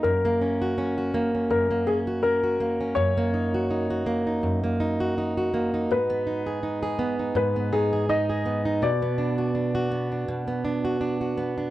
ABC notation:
X:1
M:4/4
L:1/16
Q:"Swing 16ths" 1/4=82
K:F#
V:1 name="Upright piano"
A8 A2 G2 A4 | c8 z8 | B8 B2 G2 d4 | =d8 z8 |]
V:2 name="Steel-string acoustic guitar"
F,, A, C F C F A, C F,, A, C F C F A, C | F,, A, D F D F A, D F,, A, D F D F A, D | G,, B, D G D G B, D G,, B, D G D G B, D | B,, B, =D F D F B, D B,, B, D F D F B, D |]